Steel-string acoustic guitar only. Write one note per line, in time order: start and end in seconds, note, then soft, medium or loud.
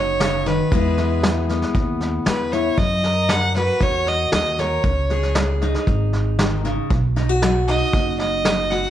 0.00 0.16 B2 medium
0.00 0.69 D#4 soft
0.00 0.69 F#4 medium
0.21 0.46 C#3 medium
0.46 0.72 D#3 medium
0.72 1.18 E3 medium
0.72 1.23 G#3 medium
0.72 1.49 B3 soft
0.72 0.97 E4 medium
0.72 2.79 G#4 medium
0.98 2.52 E4 soft
1.24 1.70 G#3 medium
1.50 2.79 B3 medium
1.75 2.22 B2 medium
2.26 2.73 G#3 medium
2.53 2.75 E4 medium
2.78 3.24 F#3 medium
3.05 4.58 A#4 medium
3.30 3.76 C#4 medium
3.57 4.82 F#4 medium
3.81 4.28 C#3 medium
4.33 4.79 C#4 medium
4.59 4.81 A#4 medium
4.84 5.30 C#3 medium
5.11 6.91 G#4 medium
5.36 5.82 G#3 medium
5.63 6.88 D#4 soft
5.88 6.34 G#2 medium
6.39 6.64 D#3 medium
6.65 6.90 C#3 medium
6.90 7.37 B2 medium
7.16 7.29 D#4 medium
7.29 8.70 F#4 soft
7.43 7.89 F#3 medium
7.69 8.90 D#4 medium
7.94 8.40 B2 medium
8.45 8.90 F#3 medium
8.72 8.90 F#4 medium